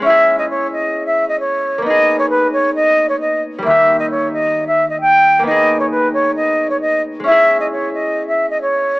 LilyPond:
<<
  \new Staff \with { instrumentName = "Flute" } { \time 4/4 \key gis \minor \tempo 4 = 133 e''8. dis''16 cis''8 dis''8. e''8 dis''16 cis''4 | dis''8. cis''16 b'8 cis''8 dis''8. cis''16 dis''8 r8 | e''8. dis''16 cis''8 dis''8. e''8 dis''16 g''4 | dis''8. cis''16 b'8 cis''8 dis''8. cis''16 dis''8 r8 |
e''8. dis''16 cis''8 dis''8. e''8 dis''16 cis''4 | }
  \new Staff \with { instrumentName = "Harp" } { \time 4/4 \key gis \minor <gis cis' e' gis'>1 | <ais b dis' gis'>1 | <dis g ais g'>1 | <ais b dis' gis'>1 |
<gis cis' e' gis'>1 | }
>>